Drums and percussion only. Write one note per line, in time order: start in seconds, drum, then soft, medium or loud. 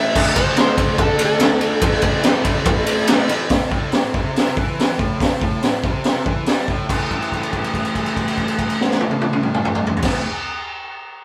0.15 kick loud
0.15 crash loud
0.36 kick medium
0.36 ride medium
0.56 snare loud
0.56 ride medium
0.78 kick medium
0.78 ride medium
0.98 kick loud
0.98 ride medium
1.19 ride medium
1.40 snare loud
1.40 ride loud
1.61 ride medium
1.81 kick loud
1.81 ride loud
2.02 kick medium
2.02 ride medium
2.23 snare loud
2.23 ride loud
2.45 kick medium
2.45 ride medium
2.65 kick loud
2.65 ride loud
2.86 ride loud
3.07 snare loud
3.07 ride loud
3.29 ride medium
3.49 kick loud
3.49 snare loud
3.49 open hi-hat medium
3.72 kick medium
3.92 snare loud
3.92 open hi-hat soft
4.14 kick medium
4.36 snare loud
4.36 open hi-hat medium
4.57 kick loud
4.79 snare loud
4.79 open hi-hat medium
4.99 kick medium
5.20 kick loud
5.20 snare loud
5.20 open hi-hat medium
5.42 kick loud
5.62 snare loud
5.62 open hi-hat medium
5.84 kick loud
6.04 snare loud
6.04 open hi-hat medium
6.26 kick loud
6.46 snare loud
6.46 open hi-hat medium
6.68 kick medium
6.89 kick loud
6.89 crash medium
7.11 kick medium
7.11 crash soft
7.22 crash soft
7.32 kick soft
7.32 crash soft
7.43 crash soft
7.53 kick medium
7.53 crash soft
7.64 crash soft
7.74 kick medium
7.74 crash soft
7.85 crash soft
7.95 kick medium
7.95 crash soft
8.06 crash soft
8.17 kick medium
8.17 crash medium
8.28 crash soft
8.38 kick medium
8.38 crash soft
8.48 crash soft
8.59 kick medium
8.59 crash medium
8.70 crash soft
8.81 snare medium
8.91 snare medium
9.01 high tom medium
9.11 high tom medium
9.22 high tom medium
9.33 mid tom loud
9.43 mid tom loud
9.54 mid tom medium
9.65 mid tom loud
9.75 mid tom loud
9.87 floor tom loud
9.97 floor tom loud
10.02 kick loud
10.02 snare medium
10.02 crash loud